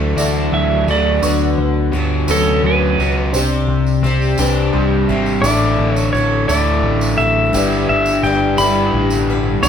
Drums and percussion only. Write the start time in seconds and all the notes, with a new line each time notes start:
0.18 tambourine
0.35 tambourine
0.88 tambourine
1.23 tambourine
1.39 tambourine
2.28 tambourine
2.46 tambourine
3.00 tambourine
3.34 tambourine
3.87 tambourine
4.05 tambourine
4.22 tambourine
4.38 tambourine
5.26 tambourine
5.44 tambourine
5.62 tambourine
5.96 tambourine
6.14 tambourine
6.49 tambourine
7.01 tambourine
7.54 tambourine
7.72 tambourine
8.06 tambourine
8.24 tambourine
8.58 tambourine
9.10 tambourine
9.63 tambourine